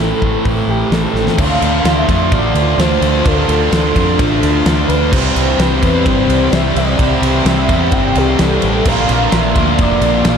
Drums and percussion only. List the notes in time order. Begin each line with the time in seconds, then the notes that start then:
0.22 kick
0.45 kick, open hi-hat
0.92 snare, open hi-hat
1.15 snare
1.27 snare
1.38 kick, crash
1.62 ride
1.85 snare, ride
2.09 kick, ride
2.32 kick, ride
2.55 ride
2.79 snare, ride
3.02 ride
3.26 kick, ride
3.49 ride
3.72 snare, ride
3.96 kick, ride
4.19 kick, ride
4.43 ride
4.66 snare, ride
4.89 ride
5.13 kick, crash
5.36 ride
5.59 snare, ride
5.83 kick, ride
6.06 kick, ride
6.30 ride
6.53 snare, ride
6.76 ride
6.99 kick, ride
7.23 ride
7.46 snare, ride
7.69 kick, ride
7.92 kick, ride
8.15 ride
8.39 snare, ride
8.62 ride
8.85 kick, crash
9.09 ride
9.32 snare, ride
9.55 kick, ride
9.78 kick, ride
10.02 ride
10.25 snare, ride